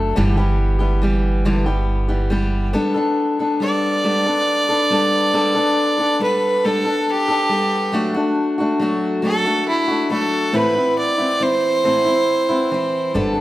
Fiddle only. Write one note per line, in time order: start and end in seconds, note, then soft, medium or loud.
3.63 6.18 D5 medium
6.23 6.67 B4 medium
6.65 7.07 A4 medium
7.12 7.94 G4 medium
9.26 9.67 A4 medium
9.68 10.10 E4 medium
10.13 10.57 A4 medium
10.56 10.97 B4 medium
10.99 11.44 D5 medium
11.42 13.11 C5 medium